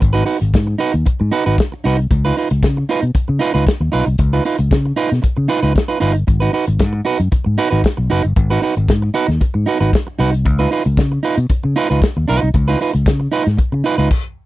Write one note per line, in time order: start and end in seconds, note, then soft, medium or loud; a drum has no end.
0.00 0.22 G#1 loud
0.00 muted clean electric guitar stroke soft
0.00 kick loud
0.00 closed hi-hat medium
0.13 0.24 D#4 medium
0.13 0.25 F#4 medium
0.13 0.25 B4 medium
0.25 0.37 D#4 medium
0.25 0.38 F#4 medium
0.25 0.38 B4 medium
0.25 open hi-hat medium
0.40 0.51 G#1 medium
0.40 muted clean electric guitar stroke soft
0.40 closed hi-hat soft
0.54 0.74 G#2 loud
0.54 kick loud
0.54 snare loud
0.54 closed hi-hat medium
0.67 muted clean electric guitar stroke soft
0.78 0.93 D#4 medium
0.78 0.94 F#4 medium
0.78 0.93 B4 medium
0.78 open hi-hat medium
0.93 1.03 D#2 medium
0.93 muted clean electric guitar stroke medium
0.93 closed hi-hat soft
1.06 muted clean electric guitar stroke soft
1.06 kick loud
1.06 closed hi-hat medium
1.20 1.30 G#2 loud
1.20 muted clean electric guitar stroke soft
1.32 1.46 D#4 medium
1.32 1.45 F#4 medium
1.32 1.45 B4 loud
1.32 open hi-hat medium
1.46 1.56 G#1 medium
1.46 1.56 D#4 medium
1.46 1.56 F#4 medium
1.46 1.56 B4 medium
1.46 closed hi-hat soft
1.58 kick loud
1.58 snare loud
1.58 closed hi-hat medium
1.72 muted clean electric guitar stroke medium
1.84 2.05 C2 medium
1.84 1.98 D#4 medium
1.84 1.98 F#4 medium
1.84 1.98 B4 medium
1.84 open hi-hat medium
1.98 muted clean electric guitar stroke medium
1.98 closed hi-hat soft
2.11 2.31 C#2 loud
2.11 muted clean electric guitar stroke soft
2.11 kick loud
2.11 closed hi-hat medium
2.25 2.36 D#4 medium
2.25 2.37 F4 medium
2.25 2.37 B4 medium
2.37 2.47 D#4 medium
2.37 2.48 F4 medium
2.37 2.48 B4 medium
2.37 open hi-hat medium
2.51 2.60 C#2 loud
2.51 muted clean electric guitar stroke soft
2.51 closed hi-hat soft
2.63 2.83 C#3 loud
2.63 kick loud
2.63 snare loud
2.63 closed hi-hat medium
2.77 muted clean electric guitar stroke medium
2.89 3.03 D#4 medium
2.89 3.02 F4 medium
2.89 3.01 B4 medium
2.89 open hi-hat medium
3.02 3.12 B2 medium
3.02 muted clean electric guitar stroke soft
3.02 closed hi-hat soft
3.15 muted clean electric guitar stroke soft
3.15 muted fingered electric bass stroke soft
3.15 kick loud
3.15 closed hi-hat medium
3.28 3.38 C#3 medium
3.28 muted clean electric guitar stroke soft
3.39 3.54 D#4 medium
3.39 3.53 F4 loud
3.39 3.53 B4 loud
3.39 open hi-hat medium
3.54 3.64 C#2 medium
3.54 3.64 D#4 medium
3.54 3.64 F4 medium
3.54 3.64 B4 medium
3.54 closed hi-hat soft
3.67 kick loud
3.67 snare loud
3.67 closed hi-hat medium
3.80 3.90 D#2 medium
3.80 muted clean electric guitar stroke medium
3.92 4.04 B1 medium
3.92 4.06 D#4 medium
3.92 4.07 F4 medium
3.92 4.06 B4 medium
3.92 open hi-hat medium
4.06 4.16 C2 medium
4.06 muted clean electric guitar stroke soft
4.06 closed hi-hat soft
4.18 4.39 C#2 loud
4.18 muted clean electric guitar stroke soft
4.18 kick loud
4.18 closed hi-hat medium
4.33 4.44 D#4 medium
4.33 4.44 F4 medium
4.33 4.45 B4 medium
4.45 4.56 D#4 medium
4.45 4.56 F4 medium
4.45 4.56 B4 medium
4.45 open hi-hat medium
4.59 4.68 C#2 medium
4.59 muted clean electric guitar stroke soft
4.59 closed hi-hat medium
4.71 4.91 C#3 loud
4.71 kick loud
4.71 snare loud
4.71 closed hi-hat medium
4.86 muted clean electric guitar stroke soft
4.96 5.11 D#4 medium
4.96 5.11 F4 medium
4.96 5.11 B4 medium
4.96 open hi-hat medium
5.11 5.21 B2 medium
5.11 muted clean electric guitar stroke soft
5.11 snare soft
5.11 closed hi-hat soft
5.22 muted clean electric guitar stroke soft
5.22 kick loud
5.22 closed hi-hat medium
5.37 5.47 C#3 medium
5.37 muted clean electric guitar stroke soft
5.48 5.63 D#4 medium
5.48 5.62 F4 medium
5.48 5.61 B4 loud
5.48 open hi-hat medium
5.62 5.72 C#2 medium
5.62 5.73 D#4 medium
5.62 5.73 F4 medium
5.62 5.72 B4 medium
5.62 closed hi-hat soft
5.75 muted clean electric guitar stroke soft
5.75 kick loud
5.75 snare loud
5.75 closed hi-hat medium
5.88 5.99 D#4 medium
5.88 5.99 F4 medium
5.88 5.98 B4 medium
6.00 6.22 G1 medium
6.00 6.15 D#4 medium
6.00 6.15 F4 medium
6.00 6.13 B4 medium
6.00 open hi-hat medium
6.15 muted clean electric guitar stroke soft
6.15 closed hi-hat soft
6.27 6.48 G#1 loud
6.27 muted clean electric guitar stroke soft
6.27 kick loud
6.27 closed hi-hat medium
6.40 6.52 D#4 medium
6.40 6.53 F#4 medium
6.40 6.53 B4 medium
6.53 6.64 D#4 medium
6.53 6.65 F#4 medium
6.53 6.65 B4 medium
6.53 open hi-hat medium
6.67 6.81 G#1 loud
6.67 muted clean electric guitar stroke medium
6.67 closed hi-hat medium
6.79 7.00 G#2 loud
6.79 kick loud
6.79 snare loud
6.79 closed hi-hat medium
6.93 muted clean electric guitar stroke soft
7.05 7.19 D#4 medium
7.05 7.19 F#4 medium
7.05 7.19 B4 medium
7.05 open hi-hat medium
7.19 7.29 F#2 medium
7.19 closed hi-hat soft
7.32 muted clean electric guitar stroke soft
7.32 muted fingered electric bass stroke soft
7.32 kick loud
7.32 closed hi-hat medium
7.45 7.56 G#2 medium
7.45 muted clean electric guitar stroke soft
7.58 7.71 D#4 medium
7.58 7.70 F#4 medium
7.58 7.69 B4 loud
7.58 open hi-hat medium
7.70 7.82 G#1 loud
7.70 7.82 D#4 medium
7.70 7.81 F#4 medium
7.70 7.81 B4 medium
7.70 closed hi-hat soft
7.84 kick medium
7.84 snare loud
7.84 closed hi-hat medium
7.97 8.08 B1 loud
7.97 muted clean electric guitar stroke medium
8.10 8.21 F#1 loud
8.10 8.24 D#4 medium
8.10 8.24 F#4 medium
8.10 8.23 B4 loud
8.10 open hi-hat medium
8.24 8.34 G1 medium
8.24 muted clean electric guitar stroke soft
8.24 closed hi-hat soft
8.36 8.57 G#1 loud
8.36 muted clean electric guitar stroke soft
8.36 kick loud
8.36 closed hi-hat medium
8.50 8.61 D#4 medium
8.50 8.62 F#4 medium
8.50 8.63 B4 medium
8.62 8.73 D#4 medium
8.62 8.74 F#4 medium
8.62 8.74 B4 medium
8.62 open hi-hat medium
8.76 8.86 G#1 loud
8.76 muted clean electric guitar stroke soft
8.76 closed hi-hat soft
8.88 9.09 G#2 loud
8.88 kick loud
8.88 snare loud
8.88 closed hi-hat medium
9.02 muted clean electric guitar stroke soft
9.14 9.28 D#4 medium
9.14 9.28 F#4 medium
9.14 9.28 B4 loud
9.14 open hi-hat medium
9.28 9.38 D#2 medium
9.28 muted clean electric guitar stroke soft
9.28 snare soft
9.28 closed hi-hat soft
9.41 muted clean electric guitar stroke soft
9.41 kick loud
9.41 closed hi-hat medium
9.54 9.64 G#2 loud
9.54 muted clean electric guitar stroke soft
9.66 9.80 D#4 medium
9.66 9.79 F#4 medium
9.66 9.79 B4 medium
9.66 open hi-hat medium
9.80 9.90 G#1 medium
9.80 9.91 D#4 medium
9.80 9.90 F#4 medium
9.80 9.90 B4 medium
9.80 closed hi-hat soft
9.93 kick loud
9.93 snare loud
9.93 closed hi-hat medium
10.07 muted clean electric guitar stroke medium
10.19 10.46 C2 medium
10.19 10.33 D#4 medium
10.19 10.33 F#4 medium
10.19 10.31 B4 loud
10.19 open hi-hat medium
10.33 muted clean electric guitar stroke soft
10.33 closed hi-hat medium
10.45 10.66 C#2 loud
10.45 muted clean electric guitar stroke soft
10.45 kick loud
10.45 closed hi-hat medium
10.59 10.70 D#4 medium
10.59 10.71 F4 medium
10.59 10.71 B4 medium
10.71 10.82 D#4 medium
10.71 10.82 F4 medium
10.71 10.83 B4 medium
10.71 open hi-hat medium
10.85 10.95 C#2 loud
10.85 muted clean electric guitar stroke soft
10.85 closed hi-hat soft
10.97 11.17 C#3 loud
10.97 kick loud
10.97 snare medium
10.97 closed hi-hat medium
11.12 muted clean electric guitar stroke soft
11.23 11.37 D#4 medium
11.23 11.38 F4 medium
11.23 11.37 B4 medium
11.23 open hi-hat medium
11.37 11.47 B2 loud
11.37 muted clean electric guitar stroke medium
11.37 closed hi-hat soft
11.49 muted fingered electric bass stroke soft
11.49 muted clean electric guitar stroke soft
11.49 kick loud
11.49 closed hi-hat medium
11.64 11.74 C#3 medium
11.64 muted clean electric guitar stroke soft
11.76 11.90 D#4 loud
11.76 11.90 F4 loud
11.76 11.89 B4 loud
11.76 open hi-hat medium
11.90 12.00 C#2 medium
11.90 12.00 F4 medium
11.90 11.99 B4 medium
11.90 closed hi-hat medium
12.02 kick loud
12.02 snare loud
12.02 closed hi-hat medium
12.17 12.26 D#2 medium
12.17 muted clean electric guitar stroke soft
12.28 12.39 B1 medium
12.28 12.48 D#4 medium
12.28 12.43 F4 medium
12.28 12.42 B4 loud
12.28 open hi-hat medium
12.42 12.52 C2 medium
12.42 muted clean electric guitar stroke soft
12.42 closed hi-hat soft
12.54 12.74 C#2 loud
12.54 muted clean electric guitar stroke soft
12.54 kick loud
12.54 closed hi-hat medium
12.68 12.80 D#4 medium
12.68 12.80 F4 medium
12.68 12.80 B4 medium
12.80 12.91 D#4 medium
12.80 12.92 F4 medium
12.80 12.92 B4 medium
12.80 open hi-hat medium
12.94 13.04 C#2 loud
12.94 muted clean electric guitar stroke medium
12.94 closed hi-hat soft
13.06 13.26 C#3 medium
13.06 kick loud
13.06 snare loud
13.06 closed hi-hat medium
13.20 muted clean electric guitar stroke medium
13.32 13.46 D#4 medium
13.32 13.45 F4 medium
13.32 13.44 B4 loud
13.32 open hi-hat medium
13.46 13.56 G#2 loud
13.46 muted clean electric guitar stroke soft
13.46 snare soft
13.46 closed hi-hat soft
13.58 muted clean electric guitar stroke soft
13.58 kick loud
13.58 closed hi-hat medium
13.72 13.82 C#3 medium
13.72 muted clean electric guitar stroke soft
13.84 13.98 D#4 medium
13.84 13.98 F4 medium
13.84 13.97 B4 loud
13.84 open hi-hat medium
13.98 14.08 C#2 medium
13.98 14.09 D#4 medium
13.98 14.08 F4 medium
13.98 14.08 B4 medium
13.98 closed hi-hat soft
14.11 kick loud
14.11 crash medium